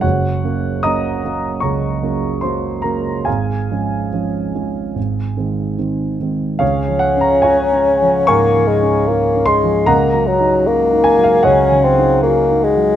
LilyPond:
<<
  \new Staff \with { instrumentName = "Grand piano" } { \time 4/4 \key des \major \tempo 4 = 74 <ges' des'' ges''>4 <ees'' bes'' ees'''>4 <des'' bes'' des'''>4 <c'' c'''>8 <bes' bes''>8 | <aes' f'' aes''>2. r4 | <aes' des'' f''>8 ges''16 bes''16 <des'' f'' aes''>4 <f'' aes'' des'''>4. c'''8 | <ees'' ges'' bes''>4. aes''16 f''16 <des'' ees'' ges''>4. r8 | }
  \new Staff \with { instrumentName = "Grand piano" } { \clef bass \time 4/4 \key des \major ges,,8 <ges bes des'>8 <ges bes des'>8 <ges bes des'>8 des,8 <ges bes des'>8 <ges bes des'>8 <ges bes des'>8 | aes,,8 <f aes des'>8 <f aes des'>8 <f aes des'>8 aes,,8 <ees aes c'>8 <ees aes c'>8 <ees aes c'>8 | \tuplet 3/2 { des,8 f8 des'8 f'8 des'8 f8 aes,8 f8 des'8 f'8 des'8 f8 } | \tuplet 3/2 { des,8 ges8 ees'8 ges'8 ees'8 ges8 des,8 des8 ees'8 ges'8 ees'8 ges8 } | }
  \new Staff \with { instrumentName = "Bassoon" } { \time 4/4 \key des \major r1 | r1 | des'2 bes8 aes8 bes8 aes8 | bes8 ges8 bes4 des'8 c'8 bes8 aes8 | }
>>